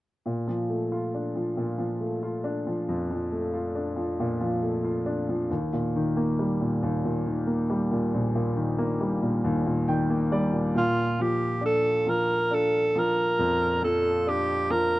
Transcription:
0.26 1.55 A#2 soft
0.47 1.34 F3 soft
0.69 1.99 A3 soft
0.92 2.21 F4 soft
1.14 2.43 D4 soft
1.35 1.77 F3 soft
1.57 4.15 A#2 soft
1.78 2.65 F3 soft
2.01 3.30 A3 soft
2.23 3.52 F4 soft
2.44 3.74 D4 soft
2.67 3.09 F3 soft
2.88 5.46 F2 soft
3.11 3.95 F3 soft
3.32 4.61 A3 soft
3.53 4.83 F4 soft
3.75 5.04 D4 soft
3.96 4.39 F3 soft
4.20 5.46 A#2 soft
4.41 5.27 F3 soft
4.62 5.47 A3 soft
4.84 5.48 F4 soft
5.06 5.49 D4 soft
5.29 5.50 F3 soft
5.50 6.81 D#2 soft
5.73 6.59 A#2 soft
5.96 7.25 D#3 soft
6.17 7.45 A#3 soft
6.39 7.68 G3 soft
6.61 7.03 A#2 soft
6.83 9.40 D#2 soft
7.05 7.90 A#2 soft
7.26 8.55 D#3 soft
7.47 8.77 A#3 soft
7.70 8.99 G3 soft
7.91 8.33 A#2 soft
8.14 10.71 A#1 soft
8.35 9.20 A#2 soft
8.56 9.87 D#3 soft
8.78 10.08 A#3 soft
9.01 10.30 G3 soft
9.22 9.64 A#2 soft
9.44 10.71 D#2 soft
9.66 10.51 A#2 soft
9.88 10.73 D#3 soft
9.88 10.28 G5 soft
10.10 10.73 A#3 soft
10.32 10.74 G3 soft
10.32 10.72 D5 soft
10.53 10.74 A#2 soft
10.75 13.33 A#2 soft
10.75 11.23 F4 medium
11.19 12.05 F3 soft
11.19 11.64 G4 medium
11.61 12.50 D4 soft
11.66 12.11 A4 medium
12.06 12.94 F3 soft
12.06 12.55 A#4 medium
12.51 14.21 D4 soft
12.51 13.00 A4 medium
12.96 13.81 F3 soft
12.96 13.83 A#4 medium
13.39 14.99 F2 medium
13.82 14.69 F3 soft
13.82 14.30 A4 medium
14.27 14.99 D4 soft
14.27 14.72 G4 medium
14.70 14.99 F3 soft
14.70 14.99 A#4 medium

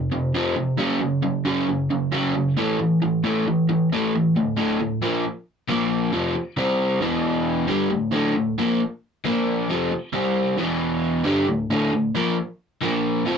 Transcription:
0.12 0.31 F2 medium
0.12 0.32 C3 medium
0.35 0.55 F2 loud
0.35 0.55 C3 medium
0.35 0.55 F3 loud
0.56 0.76 F2 medium
0.56 0.76 C3 medium
0.78 0.99 F#2 medium
0.78 0.99 C#3 loud
0.78 0.99 F#3 medium
1.01 1.21 F#2 medium
1.01 1.21 C#3 medium
1.23 1.43 F#2 medium
1.23 1.43 C#3 medium
1.45 1.66 F#2 medium
1.45 1.66 C#3 medium
1.45 1.67 F#3 loud
1.69 1.88 F#2 medium
1.69 1.88 C#3 medium
1.91 2.10 F#2 medium
1.91 2.10 C#3 medium
2.12 2.33 F#2 loud
2.12 2.33 C#3 loud
2.12 2.34 F#3 loud
2.35 2.55 F#2 medium
2.35 2.55 C#3 medium
2.57 2.78 A2 medium
2.57 2.78 E3 loud
2.57 2.79 A3 loud
2.79 2.99 A2 medium
2.79 2.99 E3 medium
3.02 3.21 A2 medium
3.02 3.22 E3 medium
3.24 3.45 A2 medium
3.24 3.45 E3 medium
3.24 3.45 A3 medium
3.47 3.66 A2 medium
3.47 3.67 E3 medium
3.69 3.89 A2 medium
3.69 3.89 E3 medium
3.92 4.12 A2 medium
3.92 4.13 E3 loud
3.92 4.13 A3 loud
4.14 4.34 A2 medium
4.14 4.34 E3 medium
4.36 4.53 D2 medium
4.36 4.53 A2 medium
4.57 4.79 D2 loud
4.57 4.79 A2 loud
4.57 4.79 D3 loud
4.80 4.98 D2 medium
4.80 4.98 A2 medium
5.02 5.23 A#2 medium
5.02 5.24 F3 loud
5.02 5.24 A#3 medium
5.68 6.12 A#2 loud
5.68 6.12 F3 loud
5.68 6.13 A#3 loud
6.12 6.34 F2 loud
6.12 6.35 C3 loud
6.12 6.35 F3 loud
6.36 muted overdriven electric guitar stroke medium
6.57 7.00 C3 medium
6.57 7.01 G3 loud
6.57 7.01 C4 loud
7.01 7.67 E2 loud
7.01 7.68 B2 loud
7.01 7.68 E3 loud
7.67 7.90 G2 medium
7.67 7.90 D3 medium
7.67 7.91 G3 loud
7.90 8.09 D2 medium
7.90 8.09 A2 medium
8.12 8.35 D2 medium
8.12 8.35 A2 medium
8.12 8.35 D3 loud
8.36 8.54 D2 medium
8.36 8.54 A2 medium
8.58 8.80 A#2 medium
8.58 8.80 F3 loud
8.58 8.80 A#3 loud
9.24 9.68 A#2 loud
9.24 9.69 F3 medium
9.24 9.69 A#3 loud
9.69 9.91 F2 loud
9.69 9.91 C3 loud
9.69 9.92 F3 loud
9.92 muted overdriven electric guitar stroke medium
10.13 10.57 C3 medium
10.13 10.58 G3 medium
10.13 10.58 C4 loud
10.57 11.24 E2 loud
10.57 11.24 B2 loud
10.57 11.24 E3 loud
11.25 11.46 G2 medium
11.25 11.47 D3 loud
11.25 11.47 G3 loud
11.48 11.66 D2 medium
11.48 11.66 A2 medium
11.70 11.91 D2 medium
11.70 11.92 A2 medium
11.70 11.92 D3 medium
11.93 12.10 D2 medium
11.93 12.10 A2 medium
12.15 12.36 A#2 medium
12.15 12.36 F3 loud
12.15 12.37 A#3 loud
12.81 13.25 A#2 loud
12.81 13.25 F3 loud
12.81 13.25 A#3 loud
13.25 13.38 F2 loud
13.25 13.38 C3 loud
13.25 13.38 F3 loud

